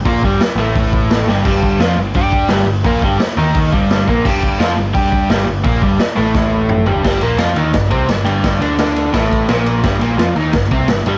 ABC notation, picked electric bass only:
X:1
M:4/4
L:1/8
Q:1/4=172
K:Gm
V:1 name="Picked electric bass" clef=bass
B,,, G,,, z A,,,4 G,,, | G,,,2 F,, G,,, G,,2 G,,, G,,, | B,,, G,,, z E,,2 G,,,2 B,,, | G,,,2 F,, G,,, G,,2 G,,, G,,, |
B,,, G,,, z A,,,4 G,,, | G,,, B,,, F,, E,, G,,, C,, G,,, G,,,- | G,,, D,,3 A,,,2 B,,,2 | G,,, B,,, F,, E,, G,,, C,, G,,, G,,, |]